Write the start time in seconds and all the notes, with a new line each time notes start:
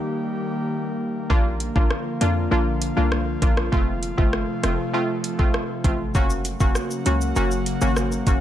Already playing: D#3 G3 A#3 G4
1.30 A#1 D3 F3 A#3 D4 F4, kick
1.60 closed hi-hat
1.76 A#1 A#3 D4 F4, kick
1.91 cross-stick
2.21 F2 A#3 D4 F4, closed hi-hat
2.51 A#1 A#3 D4 F4
2.82 closed hi-hat
2.97 C2 A#3 D4 F4
3.12 cross-stick
3.42 A#1 A#3 D4 F4, kick, closed hi-hat
3.57 cross-stick
3.72 F1 C3 F3 A3 C4 F4, kick
4.03 closed hi-hat
4.17 G1 A3 C4 F4, kick
4.33 cross-stick
4.63 F1 A3 C4 F4, cross-stick, closed hi-hat
4.93 A3 C4 F4
5.24 closed hi-hat
5.39 A3 C4 F4, kick
5.54 cross-stick
5.84 A1 A3 C4 F4, kick, closed hi-hat
6.15 F#1 C#3 F#3 A#3 C#4 F#4, kick, shaker
6.30 shaker
6.45 closed hi-hat, shaker
6.60 F#1 A#3 C#4 F#4, kick, shaker
6.75 cross-stick, shaker
6.91 shaker
7.06 C#2 A#3 C#4 F#4, closed hi-hat, shaker
7.21 shaker
7.36 F#1 A#3 C#4 F#4, shaker
7.51 shaker
7.66 closed hi-hat, shaker
7.81 G#1 A#3 C#4 F#4, shaker
7.96 cross-stick, shaker
8.12 shaker
8.27 F#1 A#3 C#4 F#4, kick, closed hi-hat, shaker